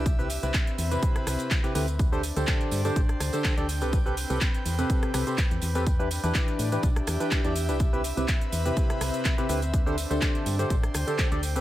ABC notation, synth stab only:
X:1
M:4/4
L:1/16
Q:"Swing 16ths" 1/4=124
K:Ddor
V:1 name="Synth stab"
z [C,CEGB] z [C,CEGB] z3 [C,CEGB]6 [C,CEGB] [D,CEGB] z | z [D,DGAc] z [D,DGAc]4 [D,DGAc] z3 [D,DGAc]2 [DGAd] z [C,CGAB] | z [C,CGAB] z [C,CGAB] z3 [C,CGAB]3 [C,CGAB] [C,CGAc] z3 [CGAB] | z [E,DEGB] z [E,DEGB]4 [E,DEGB] z3 [E,DEGB]2 [E,DEGd] z [DEGB] |
z [C,CEGB] z [C,CEGB] z3 [C,CEGB]6 [C,CEGB] [D,CEGB] z | z [D,DGAc] z [D,DGAc]4 [D,DGAc] z3 [D,DGAc]2 [DGAd] z [C,CGAB] |]